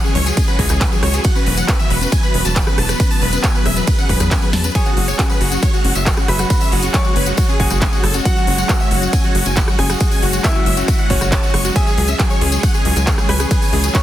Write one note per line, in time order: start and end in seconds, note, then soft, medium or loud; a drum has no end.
0.00 4.71 E3 medium
0.00 1.21 G#3 medium
0.00 1.21 C#4 medium
0.00 2.96 F#4 medium
0.00 1.21 C#5 loud
0.04 0.15 C#4 medium
0.04 0.14 G#4 medium
0.04 tambourine soft
0.15 0.32 C#2 medium
0.15 0.23 F#3 medium
0.15 0.25 C#5 medium
0.15 open hi-hat loud
0.26 0.31 F#3 medium
0.26 0.36 G#4 medium
0.26 closed hi-hat medium
0.26 tambourine medium
0.37 0.47 C#4 medium
0.37 0.47 G#4 medium
0.37 kick loud
0.37 closed hi-hat medium
0.37 ride medium
0.37 tambourine medium
0.48 0.56 F#3 medium
0.48 0.58 B4 loud
0.48 tambourine soft
0.59 0.68 C#2 loud
0.59 0.64 F#3 medium
0.59 0.69 G#4 medium
0.59 kick medium
0.59 open hi-hat loud
0.69 0.87 C#2 medium
0.69 0.80 C#4 medium
0.69 0.80 G#4 medium
0.69 cross-stick medium
0.69 closed hi-hat medium
0.69 tambourine medium
0.81 0.88 F#3 medium
0.81 0.91 B4 medium
0.81 kick loud
0.81 clap loud
0.81 closed hi-hat medium
0.81 ride medium
0.81 tambourine medium
0.92 0.96 F#3 medium
0.92 1.02 G#4 medium
0.92 tambourine soft
1.03 1.20 C#2 medium
1.03 1.13 C#4 medium
1.03 1.13 C#5 medium
1.03 cross-stick medium
1.03 open hi-hat loud
1.14 1.21 F#3 medium
1.14 1.23 G#4 medium
1.14 closed hi-hat medium
1.14 tambourine medium
1.24 11.72 F#3 medium
1.24 1.29 F#3 medium
1.24 4.71 B3 medium
1.24 4.72 B4 loud
1.24 1.34 F#5 loud
1.24 kick loud
1.24 closed hi-hat medium
1.24 ride medium
1.24 tambourine medium
1.35 1.46 C#4 medium
1.35 1.45 B4 medium
1.35 tambourine soft
1.46 1.64 E1 loud
1.46 1.54 F#3 medium
1.46 1.56 B4 medium
1.46 open hi-hat loud
1.57 1.62 F#3 medium
1.57 1.67 F#5 medium
1.57 closed hi-hat medium
1.57 tambourine medium
1.68 1.79 C#4 medium
1.68 1.78 B4 medium
1.68 kick loud
1.68 clap loud
1.68 closed hi-hat medium
1.68 ride medium
1.68 tambourine medium
1.79 1.87 F#3 medium
1.79 1.89 E5 loud
1.79 tambourine soft
1.90 2.07 E1 medium
1.90 1.95 F#3 medium
1.90 2.00 B4 medium
1.90 open hi-hat loud
2.01 2.12 C#4 medium
2.01 2.11 B4 medium
2.01 closed hi-hat medium
2.01 tambourine medium
2.12 2.20 F#3 medium
2.12 2.22 G#5 medium
2.12 kick loud
2.12 closed hi-hat medium
2.12 ride medium
2.12 tambourine medium
2.23 2.28 F#3 medium
2.23 2.33 B4 medium
2.23 tambourine soft
2.34 2.43 E1 medium
2.34 2.45 C#4 medium
2.34 2.44 B4 medium
2.34 open hi-hat loud
2.45 2.62 E1 medium
2.45 2.53 F#3 medium
2.45 2.55 A5 loud
2.45 closed hi-hat medium
2.45 tambourine medium
2.56 2.66 B4 medium
2.56 kick loud
2.56 clap loud
2.56 closed hi-hat medium
2.56 ride medium
2.56 tambourine medium
2.67 2.77 C#4 medium
2.67 2.77 B4 medium
2.67 cross-stick medium
2.67 tambourine soft
2.78 2.95 E1 medium
2.78 2.86 F#3 medium
2.78 2.88 A5 medium
2.78 cross-stick medium
2.78 open hi-hat loud
2.89 2.94 F#3 medium
2.89 2.99 B4 medium
2.89 cross-stick medium
2.89 closed hi-hat medium
2.89 tambourine medium
3.00 3.10 C#4 medium
3.00 4.73 G#4 medium
3.00 3.10 B4 medium
3.00 kick loud
3.00 closed hi-hat medium
3.00 ride medium
3.00 tambourine medium
3.10 3.18 F#3 medium
3.10 3.21 A5 loud
3.10 open hi-hat medium
3.10 tambourine soft
3.22 3.39 E1 loud
3.22 3.26 F#3 medium
3.22 3.32 B4 medium
3.22 open hi-hat medium
3.33 3.43 C#4 medium
3.33 3.43 B4 medium
3.33 closed hi-hat medium
3.33 tambourine medium
3.44 3.54 G#5 medium
3.44 kick loud
3.44 clap loud
3.44 closed hi-hat medium
3.44 ride medium
3.44 tambourine medium
3.55 3.59 F#3 medium
3.55 3.64 B4 medium
3.55 tambourine soft
3.66 3.83 E1 medium
3.66 3.76 C#4 medium
3.66 3.75 E5 medium
3.66 cross-stick medium
3.66 open hi-hat loud
3.76 3.84 F#3 medium
3.76 3.86 B4 medium
3.76 closed hi-hat medium
3.76 tambourine medium
3.87 3.92 F#3 medium
3.87 3.97 B4 medium
3.87 kick loud
3.87 closed hi-hat medium
3.87 ride medium
3.87 tambourine medium
3.98 4.09 C#4 medium
3.98 4.08 F#5 loud
3.98 tambourine soft
4.09 4.18 E1 medium
4.09 4.17 F#3 medium
4.09 4.19 B4 medium
4.09 kick medium
4.09 open hi-hat loud
4.20 4.37 E2 loud
4.20 4.25 F#3 medium
4.20 4.30 B4 medium
4.20 cross-stick medium
4.20 closed hi-hat medium
4.20 tambourine medium
4.31 4.42 C#4 medium
4.31 4.41 G#5 medium
4.31 kick loud
4.31 clap loud
4.31 closed hi-hat medium
4.31 ride medium
4.31 tambourine medium
4.42 4.50 F#3 medium
4.42 4.52 B4 medium
4.42 tambourine soft
4.53 4.70 E2 loud
4.53 4.58 F#3 medium
4.53 4.63 A5 medium
4.53 snare medium
4.53 open hi-hat loud
4.64 4.75 C#4 medium
4.64 4.74 B4 medium
4.64 closed hi-hat medium
4.64 tambourine medium
4.75 4.80 F#3 medium
4.75 14.03 G#3 medium
4.75 14.03 C#4 medium
4.75 5.54 G#4 medium
4.75 8.22 G#4 medium
4.75 11.72 C#5 loud
4.75 4.85 C#5 loud
4.75 5.54 G#5 loud
4.75 kick loud
4.75 closed hi-hat medium
4.75 ride medium
4.75 tambourine medium
4.85 4.96 C#4 medium
4.85 4.96 F#4 medium
4.85 tambourine soft
4.97 5.14 F#1 loud
4.97 5.05 F#3 medium
4.97 5.07 F#4 medium
4.97 open hi-hat loud
5.08 5.13 F#3 medium
5.08 5.18 C#5 medium
5.08 closed hi-hat medium
5.08 tambourine medium
5.19 5.29 C#4 medium
5.19 5.29 F#4 medium
5.19 kick loud
5.19 clap loud
5.19 closed hi-hat medium
5.19 ride medium
5.19 tambourine medium
5.30 5.37 F#3 medium
5.30 5.40 B4 medium
5.30 tambourine soft
5.41 5.58 F#1 medium
5.41 5.45 F#3 medium
5.41 5.51 F#4 medium
5.41 open hi-hat loud
5.52 5.62 C#4 medium
5.52 5.62 F#4 medium
5.52 closed hi-hat medium
5.52 tambourine medium
5.63 5.70 F#3 medium
5.63 5.72 C#5 medium
5.63 kick loud
5.63 closed hi-hat medium
5.63 ride medium
5.63 tambourine medium
5.74 5.78 F#3 medium
5.74 5.83 F#4 medium
5.74 tambourine soft
5.85 5.93 F#1 loud
5.85 5.95 C#4 medium
5.85 5.94 F#4 medium
5.85 open hi-hat loud
5.95 6.13 F#1 medium
5.95 6.03 F#3 medium
5.95 6.05 E5 loud
5.95 closed hi-hat medium
5.95 tambourine medium
6.06 6.11 F#3 medium
6.06 6.16 F#4 medium
6.06 kick loud
6.06 clap loud
6.06 closed hi-hat medium
6.06 ride medium
6.06 tambourine medium
6.17 6.28 C#4 medium
6.17 6.27 F#4 medium
6.17 cross-stick medium
6.17 tambourine soft
6.28 6.45 F#1 medium
6.28 6.36 F#3 medium
6.28 6.85 B4 medium
6.28 6.38 E5 medium
6.28 6.85 B5 loud
6.28 cross-stick medium
6.28 open hi-hat loud
6.39 6.44 F#3 medium
6.39 6.49 F#4 medium
6.39 cross-stick medium
6.39 closed hi-hat medium
6.39 tambourine medium
6.50 6.61 C#4 medium
6.50 6.60 F#4 medium
6.50 kick loud
6.50 closed hi-hat medium
6.50 ride medium
6.50 tambourine medium
6.61 6.69 F#3 medium
6.61 6.71 E5 loud
6.61 open hi-hat medium
6.61 tambourine soft
6.72 6.89 F#1 loud
6.72 6.77 F#3 medium
6.72 6.82 F#4 medium
6.72 open hi-hat loud
6.82 6.94 C#4 medium
6.82 6.93 F#4 medium
6.82 closed hi-hat medium
6.82 tambourine medium
6.94 7.02 F#3 medium
6.94 7.51 C#5 medium
6.94 7.04 D5 medium
6.94 7.51 C#6 loud
6.94 kick loud
6.94 clap loud
6.94 closed hi-hat medium
6.94 ride medium
6.94 tambourine medium
7.04 7.10 F#3 medium
7.04 7.15 F#4 medium
7.04 tambourine soft
7.16 7.33 F#1 medium
7.16 7.26 C#4 medium
7.16 7.26 B4 loud
7.16 open hi-hat loud
7.26 7.34 F#3 medium
7.26 7.37 F#4 medium
7.26 closed hi-hat medium
7.26 tambourine medium
7.37 7.42 F#3 medium
7.37 7.48 F#4 medium
7.37 kick loud
7.37 closed hi-hat medium
7.37 ride medium
7.37 tambourine medium
7.49 7.59 C#4 medium
7.49 7.59 G#4 loud
7.49 tambourine soft
7.60 7.68 F#1 loud
7.60 7.67 F#3 medium
7.60 7.70 F#4 medium
7.60 8.17 G#4 medium
7.60 8.17 G#5 loud
7.60 kick medium
7.60 open hi-hat loud
7.70 7.88 F#1 medium
7.70 7.75 F#3 medium
7.70 7.81 F#4 medium
7.70 cross-stick medium
7.70 closed hi-hat medium
7.70 tambourine medium
7.82 7.92 C#4 medium
7.82 7.92 G#4 medium
7.82 kick loud
7.82 clap loud
7.82 closed hi-hat medium
7.82 ride medium
7.82 tambourine medium
7.93 8.00 F#3 medium
7.93 8.02 F#4 medium
7.93 tambourine soft
8.03 8.21 F#1 medium
8.03 8.08 F#3 medium
8.03 8.13 A4 medium
8.03 cross-stick medium
8.03 open hi-hat loud
8.14 8.25 C#4 medium
8.14 8.24 F#4 medium
8.14 closed hi-hat medium
8.14 tambourine medium
8.25 8.33 F#3 medium
8.25 9.04 F#4 medium
8.25 11.72 F#4 medium
8.25 9.04 F#5 loud
8.25 8.35 F#5 loud
8.25 kick loud
8.25 closed hi-hat medium
8.25 ride medium
8.25 tambourine medium
8.36 8.41 F#3 medium
8.36 8.46 F#4 medium
8.36 tambourine soft
8.47 8.64 F#1 loud
8.47 8.58 C#4 medium
8.47 8.57 F#4 medium
8.47 open hi-hat loud
8.58 8.66 F#3 medium
8.58 8.68 F#5 medium
8.58 closed hi-hat medium
8.58 tambourine medium
8.69 8.79 F#4 medium
8.69 kick loud
8.69 clap loud
8.69 closed hi-hat medium
8.69 ride medium
8.69 tambourine medium
8.80 8.91 C#4 medium
8.80 8.90 E5 medium
8.80 tambourine soft
8.91 9.08 F#1 medium
8.91 8.99 F#3 medium
8.91 9.01 F#4 medium
8.91 open hi-hat loud
9.02 9.07 F#3 medium
9.02 9.12 F#4 medium
9.02 closed hi-hat medium
9.02 tambourine medium
9.13 9.23 C#4 medium
9.13 9.23 G#5 medium
9.13 kick loud
9.13 closed hi-hat medium
9.13 ride medium
9.13 tambourine medium
9.24 9.32 F#3 medium
9.24 9.34 F#4 medium
9.24 tambourine soft
9.35 9.43 F#1 loud
9.35 9.39 F#3 medium
9.35 9.45 F#4 medium
9.35 open hi-hat loud
9.46 9.63 F#1 medium
9.46 9.56 C#4 medium
9.46 9.56 G#5 loud
9.46 closed hi-hat medium
9.46 tambourine medium
9.56 9.67 F#4 medium
9.56 kick loud
9.56 clap loud
9.56 closed hi-hat medium
9.56 ride medium
9.56 tambourine medium
9.68 9.72 F#3 medium
9.68 9.78 F#4 medium
9.68 cross-stick medium
9.68 tambourine soft
9.79 9.96 F#1 medium
9.79 9.89 C#4 medium
9.79 10.36 G#4 medium
9.79 10.36 G#5 medium
9.79 9.89 G#5 medium
9.79 cross-stick medium
9.79 open hi-hat loud
9.90 9.97 F#3 medium
9.90 9.99 F#4 medium
9.90 cross-stick medium
9.90 closed hi-hat medium
9.90 tambourine medium
10.00 10.05 F#3 medium
10.00 10.10 F#4 medium
10.00 kick loud
10.00 closed hi-hat medium
10.00 ride medium
10.00 tambourine medium
10.11 10.22 C#4 medium
10.11 10.21 G#5 medium
10.11 open hi-hat medium
10.11 tambourine soft
10.22 10.40 F#1 loud
10.22 10.30 F#3 medium
10.22 10.32 F#4 medium
10.22 open hi-hat loud
10.33 10.38 F#3 medium
10.33 10.43 F#4 medium
10.33 closed hi-hat medium
10.33 tambourine medium
10.44 10.55 C#4 medium
10.44 11.01 E4 medium
10.44 11.01 E5 loud
10.44 10.54 G#5 medium
10.44 kick loud
10.44 clap loud
10.44 closed hi-hat medium
10.44 ride medium
10.44 tambourine medium
10.55 10.63 F#3 medium
10.55 10.65 F#4 medium
10.55 tambourine soft
10.66 10.83 F#1 medium
10.66 10.71 F#3 medium
10.66 10.76 E5 loud
10.66 open hi-hat loud
10.77 10.88 C#4 medium
10.77 10.87 F#4 medium
10.77 closed hi-hat medium
10.77 tambourine medium
10.88 10.96 F#3 medium
10.88 10.98 F#4 medium
10.88 kick loud
10.88 closed hi-hat medium
10.88 ride medium
10.88 tambourine medium
10.98 11.04 F#3 medium
10.98 11.09 F#5 loud
10.98 tambourine soft
11.10 11.19 F#1 loud
11.10 11.15 F#3 loud
11.10 11.67 C#4 medium
11.10 11.20 F#4 medium
11.10 11.67 C#5 loud
11.10 kick medium
11.10 open hi-hat loud
11.21 11.38 F#1 medium
11.21 11.31 F#3 medium
11.21 11.31 F#4 medium
11.21 cross-stick medium
11.21 closed hi-hat medium
11.21 tambourine medium
11.32 11.42 A5 loud
11.32 kick loud
11.32 clap loud
11.32 closed hi-hat medium
11.32 ride medium
11.32 tambourine medium
11.43 11.50 F#4 medium
11.43 11.53 F#4 medium
11.43 tambourine soft
11.54 11.71 F#1 medium
11.54 11.61 F#3 medium
11.54 11.64 C#6 medium
11.54 cross-stick medium
11.54 open hi-hat loud
11.65 11.69 F#3 loud
11.65 11.75 F#4 medium
11.65 closed hi-hat medium
11.65 tambourine medium
11.76 14.03 E3 medium
11.76 11.86 C#4 medium
11.76 14.03 G#4 medium
11.76 12.55 G#4 medium
11.76 14.03 C#5 loud
11.76 11.86 E5 loud
11.76 12.55 G#5 loud
11.76 kick loud
11.76 closed hi-hat medium
11.76 ride medium
11.76 tambourine medium
11.87 11.94 F#3 medium
11.87 11.96 G#4 medium
11.87 tambourine soft
11.97 12.15 C#2 loud
11.97 12.02 F#3 medium
11.97 12.07 G#4 medium
11.97 open hi-hat loud
12.08 12.19 C#4 medium
12.08 12.18 E5 medium
12.08 closed hi-hat medium
12.08 tambourine medium
12.19 12.27 F#3 medium
12.19 12.29 G#4 medium
12.19 kick loud
12.19 clap loud
12.19 closed hi-hat medium
12.19 ride medium
12.19 tambourine medium
12.30 12.35 F#3 medium
12.30 12.40 C#5 medium
12.30 tambourine soft
12.41 12.58 C#2 medium
12.41 12.52 C#4 medium
12.41 12.51 G#4 medium
12.41 open hi-hat loud
12.52 12.60 F#3 medium
12.52 12.62 G#4 medium
12.52 closed hi-hat medium
12.52 tambourine medium
12.63 12.68 F#3 medium
12.63 12.73 F#5 medium
12.63 kick loud
12.63 closed hi-hat medium
12.63 ride medium
12.63 tambourine medium
12.74 12.85 C#4 medium
12.74 12.84 G#4 medium
12.74 tambourine soft
12.85 12.94 C#2 loud
12.85 12.93 F#3 medium
12.85 12.95 G#4 medium
12.85 open hi-hat loud
12.96 13.13 C#2 medium
12.96 13.01 F#3 medium
12.96 13.06 G#5 loud
12.96 closed hi-hat medium
12.96 tambourine medium
13.07 13.18 C#4 medium
13.07 13.17 G#4 medium
13.07 kick loud
13.07 clap loud
13.07 closed hi-hat medium
13.07 ride medium
13.07 tambourine medium
13.18 13.26 F#3 medium
13.18 13.28 G#4 medium
13.18 cross-stick medium
13.18 tambourine soft
13.29 13.46 C#2 medium
13.29 13.34 F#3 medium
13.29 13.86 B4 medium
13.29 13.39 G#5 loud
13.29 13.86 B5 medium
13.29 cross-stick medium
13.29 open hi-hat loud
13.40 13.50 C#4 medium
13.40 13.50 G#4 medium
13.40 cross-stick medium
13.40 closed hi-hat medium
13.40 tambourine medium
13.51 13.59 F#3 medium
13.51 13.61 G#4 medium
13.51 kick loud
13.51 closed hi-hat medium
13.51 ride medium
13.51 tambourine medium
13.62 13.67 F#3 medium
13.62 13.72 G#5 medium
13.62 open hi-hat medium
13.62 tambourine soft
13.73 13.90 C#2 loud
13.73 13.83 C#4 medium
13.73 13.83 G#4 medium
13.73 open hi-hat loud
13.84 13.91 F#3 medium
13.84 13.94 G#4 medium
13.84 closed hi-hat medium
13.84 tambourine medium
13.95 13.99 F#3 medium
13.95 14.03 C#5 medium
13.95 14.03 F#5 medium
13.95 14.03 C#6 loud
13.95 kick loud
13.95 clap loud
13.95 closed hi-hat medium
13.95 ride medium
13.95 tambourine medium